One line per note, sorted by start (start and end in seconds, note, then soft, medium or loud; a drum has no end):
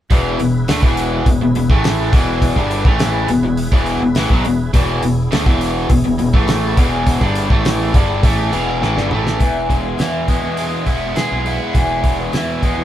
0.10 0.38 E1 medium
0.10 0.39 E2 medium
0.10 0.39 B2 medium
0.10 0.40 E3 loud
0.10 2.40 E4 medium
0.10 2.40 G#4 medium
0.10 2.40 B4 medium
0.10 kick medium
0.10 open hi-hat medium
0.39 0.67 E1 medium
0.39 0.63 E2 medium
0.39 0.63 B2 medium
0.39 open hi-hat medium
0.68 0.82 D2 medium
0.68 0.82 D3 medium
0.68 0.83 A3 loud
0.68 snare loud
0.68 open hi-hat medium
0.83 1.23 E1 medium
0.83 1.25 E2 medium
0.83 1.26 B2 medium
0.83 1.26 E3 loud
0.83 kick loud
0.97 open hi-hat medium
1.26 1.40 E1 medium
1.26 1.40 E2 medium
1.26 1.41 B2 medium
1.26 kick medium
1.26 open hi-hat medium
1.41 1.55 E1 medium
1.41 1.55 E2 medium
1.41 1.55 B2 medium
1.55 1.70 E1 medium
1.55 1.70 E2 medium
1.55 1.70 B2 medium
1.55 open hi-hat medium
1.70 2.10 A1 medium
1.70 2.13 A2 medium
1.70 2.13 E3 medium
1.70 2.13 A3 medium
1.70 kick loud
1.84 snare loud
1.84 open hi-hat medium
2.13 2.54 E1 medium
2.13 2.56 E2 medium
2.13 2.56 B2 loud
2.13 2.56 E3 loud
2.13 kick loud
2.13 open hi-hat medium
2.42 4.72 E4 medium
2.42 4.72 G#4 medium
2.42 4.72 B4 medium
2.42 kick loud
2.42 open hi-hat medium
2.56 2.84 G1 medium
2.56 2.85 G2 medium
2.56 2.85 D3 medium
2.56 2.85 G3 medium
2.56 kick medium
2.71 open hi-hat medium
2.85 3.26 A1 medium
2.85 3.28 A2 medium
2.85 3.29 E3 medium
2.85 3.29 A3 medium
2.85 kick loud
2.99 snare loud
2.99 open hi-hat medium
3.28 3.42 E1 medium
3.28 3.43 E2 medium
3.28 3.43 B2 medium
3.28 open hi-hat medium
3.43 3.70 E1 medium
3.43 3.67 E2 medium
3.43 3.67 B2 medium
3.57 open hi-hat medium
3.72 3.99 E1 medium
3.72 4.01 E2 medium
3.72 4.01 B2 medium
3.72 4.01 E3 medium
3.72 kick loud
3.86 open hi-hat medium
4.00 4.14 E1 medium
4.00 4.17 E2 medium
4.00 4.16 B2 medium
4.15 4.29 A1 medium
4.15 4.30 A2 medium
4.15 4.30 E3 loud
4.15 snare loud
4.15 open hi-hat medium
4.30 4.44 B1 loud
4.30 4.44 B2 medium
4.30 4.45 F#3 loud
4.30 kick loud
4.44 4.72 E1 medium
4.44 4.68 E2 medium
4.44 4.68 B2 medium
4.44 open hi-hat medium
4.74 5.01 E1 loud
4.74 5.02 E2 medium
4.74 5.03 B2 medium
4.74 5.03 E3 loud
4.74 7.05 B3 medium
4.74 7.05 E4 medium
4.74 7.04 G#4 medium
4.74 kick loud
4.74 open hi-hat medium
5.03 5.30 E1 medium
5.03 5.27 E2 medium
5.03 5.27 B2 medium
5.03 open hi-hat medium
5.32 5.46 D2 medium
5.32 5.46 D3 medium
5.32 5.46 A3 loud
5.32 snare loud
5.32 open hi-hat medium
5.46 5.87 E1 medium
5.46 5.89 E2 medium
5.46 5.90 B2 loud
5.46 5.90 E3 loud
5.46 kick loud
5.61 open hi-hat medium
5.90 6.04 E1 medium
5.90 6.04 E2 medium
5.90 6.04 B2 medium
5.90 kick medium
5.90 open hi-hat medium
6.05 6.19 E1 medium
6.05 6.18 E2 medium
6.05 6.18 B2 medium
6.19 6.33 E1 medium
6.19 6.34 E2 medium
6.19 6.33 B2 medium
6.19 open hi-hat medium
6.34 6.74 A1 loud
6.34 6.77 A2 medium
6.34 6.77 E3 medium
6.34 6.77 A3 loud
6.34 kick loud
6.48 snare loud
6.48 open hi-hat medium
6.77 7.18 E1 medium
6.77 7.20 E2 medium
6.77 7.21 B2 medium
6.77 7.21 E3 loud
6.77 kick loud
6.77 open hi-hat medium
7.07 9.38 B3 medium
7.07 9.38 E4 medium
7.07 9.39 G#4 medium
7.07 kick medium
7.07 open hi-hat medium
7.21 7.49 G1 loud
7.21 7.50 G2 medium
7.21 7.50 D3 medium
7.21 7.50 G3 loud
7.21 kick medium
7.35 open hi-hat medium
7.50 7.91 A1 medium
7.50 7.94 A2 medium
7.50 7.94 E3 medium
7.50 7.94 A3 medium
7.50 kick medium
7.65 snare loud
7.65 open hi-hat medium
7.94 8.22 G1 medium
7.94 8.23 G2 medium
7.94 8.23 D3 loud
7.94 8.24 G3 loud
7.94 kick loud
7.94 open hi-hat medium
8.23 8.51 A1 medium
8.23 8.52 A2 medium
8.23 8.52 E3 loud
8.23 8.53 A3 loud
8.23 kick loud
8.23 open hi-hat medium
8.53 8.80 E1 medium
8.53 8.81 E2 medium
8.53 8.82 B2 medium
8.53 8.82 E3 medium
8.53 open hi-hat medium
8.82 8.96 A1 medium
8.82 8.96 A2 medium
8.82 8.96 E3 loud
8.82 snare medium
8.96 9.10 G1 medium
8.96 9.11 G2 loud
8.96 9.11 D3 loud
8.96 snare medium
9.11 9.39 A1 medium
9.11 9.40 A2 medium
9.11 9.39 E3 medium
9.11 9.41 A3 medium
9.11 mid tom medium
9.27 snare medium
9.38 9.93 E1 medium
9.38 9.83 E2 medium
9.38 10.87 E2 medium
9.38 9.83 B2 medium
9.38 9.84 E3 medium
9.38 11.75 E3 medium
9.38 9.84 G#3 medium
9.38 9.83 B3 medium
9.38 9.83 E4 medium
9.38 kick medium
9.38 open hi-hat medium
9.69 11.16 B2 medium
9.69 10.57 G#3 medium
9.69 kick medium
9.69 open hi-hat soft
9.84 9.97 E3 soft
9.84 9.97 G#3 soft
9.84 9.98 B3 medium
9.84 9.97 E4 medium
9.98 10.28 E2 medium
9.98 10.39 E2 medium
9.98 10.28 B2 medium
9.98 10.25 E3 medium
9.98 10.57 E3 medium
9.98 10.27 G#3 medium
9.98 10.27 B3 medium
9.98 10.27 E4 medium
9.98 10.87 E4 medium
9.98 snare loud
9.98 open hi-hat medium
10.27 10.42 E3 medium
10.27 10.42 G#3 medium
10.27 11.75 G#3 medium
10.27 10.41 B3 medium
10.27 11.75 B3 medium
10.27 10.41 E4 medium
10.27 kick medium
10.27 open hi-hat medium
10.42 10.83 E2 medium
10.42 10.71 E3 soft
10.42 10.71 G#3 soft
10.42 10.70 B3 soft
10.42 10.70 E4 soft
10.57 12.32 E3 medium
10.57 11.15 G#3 medium
10.57 open hi-hat medium
10.71 10.84 E3 soft
10.71 10.84 G#3 soft
10.71 10.86 B3 soft
10.71 10.86 E4 medium
10.85 11.13 E1 medium
10.85 11.14 E3 medium
10.85 11.14 G#3 medium
10.85 11.14 B3 medium
10.85 11.44 B3 medium
10.85 11.45 E4 medium
10.85 11.14 E4 medium
10.85 kick medium
10.85 open hi-hat soft
11.15 11.59 E2 medium
11.15 11.60 B2 medium
11.15 11.59 E3 medium
11.15 11.58 G#3 medium
11.15 12.03 G#3 medium
11.15 11.58 B3 medium
11.15 11.57 E4 medium
11.15 12.62 G#4 medium
11.15 snare loud
11.15 open hi-hat medium
11.32 11.57 B1 medium
11.46 12.84 B3 medium
11.46 12.33 E4 medium
11.46 open hi-hat soft
11.58 11.72 E3 soft
11.58 11.73 G#3 soft
11.58 11.73 B3 soft
11.58 11.73 E4 medium
11.73 12.27 E1 medium
11.73 12.18 E2 medium
11.73 12.84 E2 medium
11.73 12.18 B2 medium
11.73 12.18 E3 medium
11.73 12.84 E3 medium
11.73 12.18 G#3 medium
11.73 12.18 B3 loud
11.73 12.16 E4 medium
11.73 kick loud
11.73 open hi-hat medium
12.04 12.84 B2 medium
12.04 12.84 G#3 medium
12.04 kick medium
12.04 open hi-hat soft
12.18 12.31 E3 soft
12.18 12.31 G#3 medium
12.18 12.32 B3 soft
12.18 12.32 E4 soft
12.32 12.62 E2 medium
12.32 12.72 E2 medium
12.32 12.62 B2 medium
12.32 12.59 E3 medium
12.32 12.84 E3 medium
12.32 12.61 G#3 medium
12.32 12.61 B3 medium
12.32 12.62 E4 medium
12.32 12.84 E4 medium
12.32 snare medium
12.32 open hi-hat medium
12.60 12.84 E3 medium
12.60 12.84 G#3 medium
12.60 12.84 B3 medium
12.60 kick medium
12.60 open hi-hat soft
12.78 12.84 E2 medium